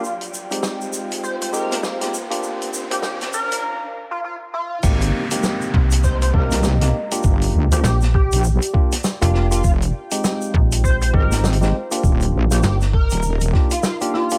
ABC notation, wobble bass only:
X:1
M:4/4
L:1/16
Q:"Swing 16ths" 1/4=100
K:Fdor
V:1 name="Wobble bass" clef=bass
z16 | z16 | A,,,2 z8 C,,4 z2 | G,,,2 D,,2 z3 B,,,2 z6 z |
F,,,2 z8 A,,,4 z2 | E,,,2 B,,,2 z3 E,,,3 z6 |]